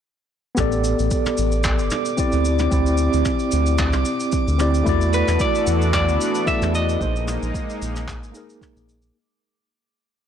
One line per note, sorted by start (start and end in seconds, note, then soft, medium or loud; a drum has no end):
0.55 0.95 A1 medium
0.55 2.14 B3 medium
0.55 2.15 G4 medium
0.55 2.16 A4 medium
0.55 9.16 D6 medium
0.55 kick loud
0.55 mid tom medium
0.55 cabasa medium
0.60 2.17 D5 medium
0.72 cabasa soft
0.84 cabasa medium
0.99 1.09 A1 medium
0.99 cabasa soft
1.11 kick loud
1.11 cabasa medium
1.26 mid tom medium
1.26 cabasa soft
1.37 1.81 A1 medium
1.37 cabasa medium
1.52 cabasa soft
1.64 kick loud
1.64 clap medium
1.64 cabasa medium
1.79 1.90 G1 medium
1.79 cabasa soft
1.90 mid tom medium
1.90 cabasa medium
2.05 cabasa soft
2.17 2.69 C4 medium
2.17 2.69 E4 medium
2.17 2.69 G4 medium
2.17 2.70 D5 medium
2.17 kick medium
2.17 cabasa medium
2.32 2.68 D2 loud
2.32 cabasa soft
2.45 cabasa medium
2.59 mid tom medium
2.59 cabasa soft
2.71 3.09 D2 medium
2.71 2.84 C4 medium
2.71 2.85 E4 medium
2.71 2.85 G4 medium
2.71 2.86 D5 medium
2.71 kick loud
2.71 cabasa medium
2.86 cabasa soft
2.97 cabasa medium
3.13 3.24 D2 medium
3.13 cabasa soft
3.25 kick loud
3.25 mid tom medium
3.25 cabasa medium
3.39 cabasa soft
3.52 3.96 D2 medium
3.52 cabasa medium
3.66 cabasa soft
3.78 kick loud
3.78 clap medium
3.78 cabasa medium
3.93 4.04 C2 medium
3.93 mid tom medium
3.93 cabasa soft
4.05 cabasa medium
4.20 cabasa soft
4.32 kick loud
4.32 cabasa medium
4.48 4.83 D2 loud
4.48 cabasa soft
4.58 4.83 C4 medium
4.58 4.83 E4 medium
4.58 4.84 G4 medium
4.58 4.84 D5 medium
4.58 mid tom medium
4.58 cabasa medium
4.74 cabasa soft
4.84 5.24 E2 loud
4.84 6.99 E3 medium
4.84 6.43 A3 medium
4.84 6.99 B3 medium
4.84 6.99 D4 medium
4.84 6.44 E4 medium
4.84 6.99 F#4 medium
4.84 6.45 F#4 medium
4.84 6.99 A4 medium
4.84 kick loud
4.84 cabasa medium
4.89 6.46 D5 medium
5.01 cabasa soft
5.13 5.41 B4 medium
5.13 cabasa medium
5.28 5.38 E2 medium
5.28 mid tom medium
5.28 cabasa medium
5.40 5.93 D5 medium
5.40 kick loud
5.40 cabasa medium
5.55 cabasa soft
5.67 6.10 E2 medium
5.67 cabasa medium
5.82 cabasa soft
5.93 6.47 D5 loud
5.93 kick loud
5.93 clap medium
5.93 mid tom medium
5.93 cabasa medium
6.09 6.18 D2 medium
6.09 cabasa soft
6.21 cabasa medium
6.35 cabasa soft
6.46 6.97 A3 medium
6.46 6.98 E4 medium
6.46 6.98 F#4 medium
6.46 6.99 D5 medium
6.46 6.75 E5 loud
6.46 kick loud
6.46 cabasa medium
6.62 6.97 E2 loud
6.62 mid tom medium
6.62 cabasa soft
6.75 7.78 D#5 loud
6.75 cabasa medium
6.89 cabasa soft
7.00 7.38 A#1 medium
7.00 9.13 G#3 medium
7.00 7.13 A#3 medium
7.00 9.13 A#3 medium
7.00 7.13 D#4 medium
7.00 9.13 D#4 medium
7.00 7.14 G#4 medium
7.00 7.14 C5 medium
7.00 kick loud
7.00 cabasa soft
7.16 cabasa soft
7.28 mid tom medium
7.28 cabasa medium
7.43 7.52 A#1 medium
7.43 cabasa medium
7.54 kick loud
7.54 cabasa medium
7.70 cabasa soft
7.82 8.24 A#1 medium
7.82 cabasa medium
7.96 mid tom medium
7.96 cabasa soft
8.08 kick loud
8.08 clap medium
8.08 cabasa medium
8.23 8.33 G#1 medium
8.23 cabasa soft
8.32 9.11 A#3 medium
8.32 9.12 D#4 medium
8.32 9.12 G#4 medium
8.32 cabasa medium
8.37 9.13 A#4 medium
8.50 cabasa soft
8.61 kick loud
8.61 mid tom medium
8.61 cabasa medium
8.76 9.12 A#1 loud
8.76 cabasa soft
8.89 cabasa medium
9.02 cabasa soft